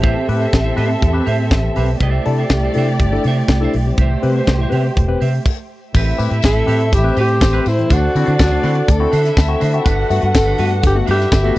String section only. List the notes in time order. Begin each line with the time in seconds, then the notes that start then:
Already playing: C4 A4 E5
2.00 A3 G4 D5
3.97 A3 G4 C5
5.95 E4 E5
7.17 C4 C5
7.90 D4 D5
9.11 E4 E5
9.86 F#4 F#5
11.08 E4 E5
11.55 D4